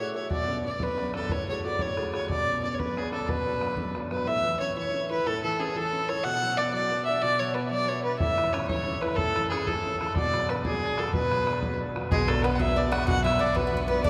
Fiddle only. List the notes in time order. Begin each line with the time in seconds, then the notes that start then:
0.00 C#5
0.16 C#5
0.31 D5
0.66 D5
0.83 B4
1.15 A4
1.31 C#5
1.49 C#5
1.65 D5
1.81 C#5
2.14 C#5
2.30 D5
2.63 D5
2.74 C#5
2.79 B4
2.98 G#4
3.13 A4
3.29 B4
4.12 B4
4.27 E5
4.60 C#5
4.78 C#5
5.11 B4
5.27 A4
5.44 A4
5.60 G#4
5.76 A4
6.09 C#5
6.24 F#5
6.57 D5
6.73 D5
7.05 E5
7.22 D5
7.39 C#5
7.54 B4
7.71 D5
7.88 C#5
8.04 B4
8.19 E5
8.53 C#5
8.67 C#5
9.01 B4
9.16 A4
9.50 G#4
9.67 A4
9.97 G#4 A4
10.17 D5
10.50 B4
10.65 G#4
10.98 A4
11.14 B4
12.12 G#4
12.28 A4
12.45 B4
12.56 F#5
12.60 E5
12.77 D5
12.92 F#5
13.07 F#5
13.24 E5
13.41 D5
13.56 B4
13.88 B4
14.04 D5